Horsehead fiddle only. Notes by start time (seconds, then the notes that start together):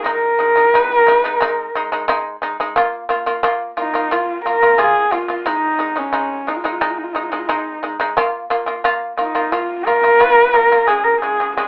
0.07 A#4
0.77 B4
0.96 A#4
1.17 B4
1.36 A#4
3.78 D#4
4.12 F4
4.45 A#4
4.78 G#4
5.13 F4
5.39 F4
5.47 D#4
5.98 C#4
6.48 D#4
6.56 F4
6.64 D#4
6.72 F4
6.81 D#4
6.90 F4
6.98 D#4
7.04 F4
7.13 D#4
7.22 F4
7.29 D#4
7.39 F4
7.48 D#4
9.19 D#4
9.52 F4
9.86 A#4
10.87 G#4
11.04 A#4
11.22 G#4
11.56 G#4